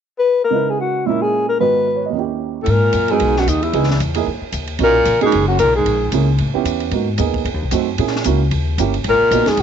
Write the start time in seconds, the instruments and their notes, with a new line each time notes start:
0.19 alto saxophone B4
0.44 alto saxophone A#4
0.51 grand piano C#3 G#3 D#4 E4
0.56 grand piano B4
0.70 alto saxophone G#4
0.80 alto saxophone F#4
1.05 grand piano A#2 G#3 C#4 E4, alto saxophone E4
1.10 grand piano A#4
1.22 alto saxophone G#4
1.49 alto saxophone A#4
1.60 grand piano G#2 D#3 B3 F#4 B4, alto saxophone B4
1.87 grand piano B4
1.96 grand piano C#5
2.06 grand piano D#2 D#5
2.12 grand piano D#3 C#4
2.18 grand piano E4 G4
2.62 baritone saxophone A2, alto saxophone A4, ride
2.67 upright bass G#2, baritone saxophone A#2, alto saxophone A#4
2.93 upright bass F#2, hi-hat pedal, ride
3.08 grand piano B3 D#4 F#4 A#4, alto saxophone G#4, ride
3.12 baritone saxophone G#2
3.20 upright bass B1, ride
3.36 baritone saxophone F#2, alto saxophone F#4, snare
3.46 upright bass D#2, baritone saxophone D#2, alto saxophone D#4, hi-hat pedal, ride
3.63 baritone saxophone E2, alto saxophone E4, ride
3.73 upright bass C#2, grand piano B3 D#4 E4 G#4, ride
3.83 snare
3.91 snare
4.00 upright bass E2, hi-hat pedal, ride
4.14 grand piano A#3 D#4 E4 G#4, ride
4.27 upright bass F#2
4.41 muted upright bass stroke
4.52 upright bass D#2, hi-hat pedal, ride
4.67 ride
4.79 upright bass B1, grand piano A#3 C#4 D#4 F#4, ride
4.83 baritone saxophone A#2, alto saxophone A#4
5.05 upright bass A#1, hi-hat pedal, ride
5.21 grand piano A#3 C#4 D#4 F#4, alto saxophone G#4, muted upright bass stroke, ride
5.25 baritone saxophone G#2
5.32 upright bass F#1, ride
5.48 baritone saxophone F#2, alto saxophone F#4
5.59 upright bass B1, baritone saxophone A#2, alto saxophone A#4, hi-hat pedal, ride
5.76 baritone saxophone G#2, alto saxophone G#4
5.85 upright bass A#1, ride
6.12 upright bass C#2, grand piano A#3 C#4 E4 G#4, hi-hat pedal, ride
6.38 upright bass A2, ride
6.54 grand piano B3 C#4 E4 G4, muted upright bass stroke
6.64 upright bass E2, hi-hat pedal, ride
6.80 ride
6.91 upright bass G#2, grand piano A#3 B3 D#4 F#4, ride
7.18 upright bass D#2, grand piano A#3 B3 D#4 G#4, hi-hat pedal, ride
7.34 kick, ride
7.45 upright bass F2, ride
7.54 upright bass D#2
7.63 upright bass C2
7.71 upright bass F#2, grand piano A3 C4 D#4 F#4, hi-hat pedal, ride
7.98 upright bass A#2, grand piano A#3 C#4 E4 G#4, ride
8.07 snare
8.16 snare
8.24 upright bass C#2, grand piano A#3 C#4 E4 F#4, hi-hat pedal, ride
8.51 upright bass D#2, ride
8.78 upright bass G1, grand piano A#3 C#4 E4 G4, hi-hat pedal, ride
8.94 ride
9.04 upright bass G#1, baritone saxophone A#2, ride
9.09 alto saxophone A#4
9.21 muted upright bass stroke
9.31 upright bass A#1, grand piano A#3 B3 D#4 F#4, hi-hat pedal, ride
9.46 baritone saxophone G#2, alto saxophone G#4, muted upright bass stroke, snare, ride
9.57 upright bass B1, ride